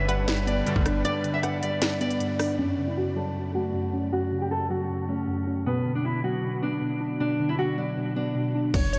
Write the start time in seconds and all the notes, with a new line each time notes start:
Already playing: G1 G2 D3 G3 D4 B4
0.08 G3 B4 F#5, closed hi-hat
0.28 G2, snare, closed hi-hat
0.47 B3 D5, closed hi-hat
0.66 G2 B2 D3 G3, closed hi-hat
0.76 G1, kick
0.86 D4, cross-stick, closed hi-hat
1.05 G2 D5, closed hi-hat
1.24 D3, closed hi-hat
1.34 E5
1.43 G2 F#5, cross-stick, closed hi-hat
1.62 G3 D5, closed hi-hat
1.82 G2, snare, closed hi-hat
2.01 B3 D5, closed hi-hat
2.11 closed hi-hat
2.20 G2, closed hi-hat
2.39 D4, cross-stick, open hi-hat
2.59 F#2 C#4
2.78 C#3
2.88 E4
2.97 F#2 F#4
3.16 F#3 A4
3.35 F#2
3.54 A3 F#4
3.74 F#2
3.93 C#4
4.13 F#2 F#4
4.32 C#3
4.41 G4
4.51 F#2 A4
4.70 F#3 F#4
4.90 F#2
5.09 A3 C#4
5.28 F#2
5.47 C#4
5.66 B2 B3
5.86 D3
5.95 D4
6.05 B2 E4
6.24 F#3 F#4
6.43 B2
6.62 B3 D4
6.81 B2
7.01 D4
7.20 B2 D4
7.40 D3
7.49 E4
7.59 B2 F#4
7.78 F#3 D4
7.97 B2
8.16 B3 D4
8.35 B2
8.55 D4
8.74 F#1 F#2 F#3 C#4 A4 C#5, kick, closed hi-hat, crash
8.93 C#3 C#5, closed hi-hat